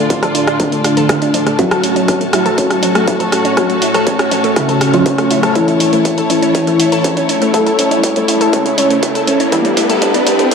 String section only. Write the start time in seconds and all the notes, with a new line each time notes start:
Already playing: F4 D5 A5
1.59 F#4
1.65 C#5
5.55 E4
9.60 B4
10.22 G5